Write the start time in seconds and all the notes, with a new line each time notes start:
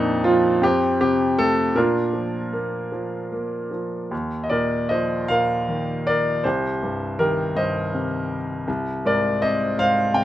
Already playing: F2 A#2 F3 A#3 D4 D#4
0.24 F3 F4
0.61 F2 G4
0.66 C4
1.01 C3 G4
1.38 A3 A4
1.75 A#2 D4 F4 A#4
2.13 F3
2.53 A#3
2.92 F3
3.32 A#3
3.71 F3
4.11 D#2
4.44 D#5
4.50 A#2 A#4 D5
4.89 F3 C5 D#5
5.28 A#2 A#4 F5
5.68 D#3
6.07 A#4 D5
6.44 C2 G4 C5
6.83 G2
7.19 D#3 G4 A#4
7.56 G2 C5 D#5
7.94 C3
8.68 C2
9.05 G#2 A#4 D5
9.42 C4 C5 D#5
9.78 G#2 C5 F5
10.14 C3 G5